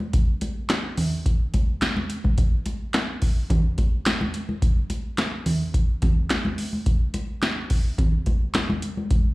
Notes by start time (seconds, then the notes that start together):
0.00 high conga
0.13 kick, closed hi-hat
0.41 closed hi-hat, muted conga
0.69 snare, clap, closed hi-hat, high conga
0.97 open hi-hat, low conga
1.26 kick, closed hi-hat
1.54 kick, closed hi-hat, muted conga
1.82 snare, clap, closed hi-hat, high conga
1.97 high conga
2.10 closed hi-hat
2.24 kick, high conga
2.38 kick, closed hi-hat, muted conga
2.66 closed hi-hat, muted conga
2.94 snare, clap, closed hi-hat, high conga
3.22 kick, open hi-hat
3.50 kick, closed hi-hat, low conga
3.78 kick, closed hi-hat, muted conga
4.06 snare, clap, closed hi-hat, high conga
4.21 high conga
4.34 closed hi-hat
4.49 high conga
4.62 kick, closed hi-hat
4.90 closed hi-hat, muted conga
5.18 snare, clap, closed hi-hat, high conga
5.46 open hi-hat, low conga
5.74 kick, closed hi-hat
6.02 kick, closed hi-hat, muted conga, low conga
6.30 snare, clap, closed hi-hat, high conga
6.45 high conga
6.58 open hi-hat
6.73 high conga
6.86 kick, closed hi-hat
7.14 closed hi-hat, muted conga
7.42 snare, clap, closed hi-hat, high conga
7.70 kick, open hi-hat
7.98 kick, closed hi-hat, low conga
8.26 kick, closed hi-hat, muted conga
8.54 snare, clap, closed hi-hat, high conga
8.70 high conga
8.82 closed hi-hat
8.97 high conga
9.11 kick, closed hi-hat